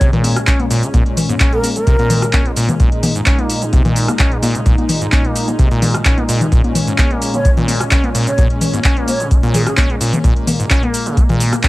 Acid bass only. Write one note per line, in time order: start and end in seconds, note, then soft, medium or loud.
0.01 0.11 C3 loud
0.13 0.38 A#2 loud
0.36 0.40 C#3 loud
0.47 0.61 C#4 loud
0.60 0.66 A#3 medium
0.71 0.84 A#2 loud
0.83 0.89 C#3 medium
0.94 1.04 A#2 loud
1.29 1.35 G#2 medium
1.40 1.54 C#4 loud
1.53 1.77 A#3 medium
1.76 1.80 C#3 medium
1.87 1.97 C3 loud
1.99 2.24 A#2 loud
2.22 2.26 C#3 loud
2.33 2.47 C#4 loud
2.46 2.52 A#3 medium
2.57 2.70 A#2 loud
2.69 2.75 C#3 medium
2.80 2.90 A#2 loud
3.15 3.21 G#2 medium
3.26 3.40 C#4 loud
3.39 3.63 A#3 medium
3.62 3.66 C#3 medium
3.73 3.83 C3 loud
3.85 4.10 A#2 loud
4.08 4.12 C#3 loud
4.19 4.33 C#4 loud
4.32 4.38 A#3 medium
4.43 4.56 A#2 loud
4.55 4.61 C#3 medium
4.66 4.76 A#2 loud
5.01 5.07 G#2 medium
5.12 5.26 C#4 loud
5.25 5.49 A#3 medium
5.48 5.52 C#3 medium
5.59 5.69 C3 loud
5.71 5.96 A#2 loud
5.94 5.98 C#3 loud
6.05 6.19 C#4 loud
6.18 6.24 A#3 medium
6.29 6.43 A#2 loud
6.41 6.47 C#3 medium
6.52 6.62 A#2 loud
6.87 6.94 G#2 medium
6.99 7.12 C#4 loud
7.11 7.36 A#3 medium
7.34 7.47 C#3 medium
7.45 7.52 A#3 medium
7.57 7.82 A#2 loud
7.81 7.84 C#3 loud
7.91 8.05 C#4 loud
8.04 8.10 A#3 medium
8.15 8.29 A#2 loud
8.27 8.33 C#3 medium
8.38 8.48 A#2 loud
8.74 8.80 G#2 medium
8.85 8.98 C#4 loud
8.97 9.22 A#3 medium
9.20 9.33 C#3 medium
9.31 9.38 A#3 medium
9.43 9.68 A#2 loud
9.67 9.70 C#3 loud
9.78 9.91 C#4 loud
9.90 9.96 A#3 medium
10.01 10.15 A#2 loud
10.13 10.19 C#3 medium
10.24 10.34 A#2 loud
10.60 10.66 G#2 medium
10.71 10.84 C#4 loud
10.83 11.08 A#3 medium
11.06 11.19 C#3 medium
11.17 11.24 A#3 medium
11.29 11.54 A#2 loud
11.53 11.56 C#3 loud
11.63 11.68 C#4 loud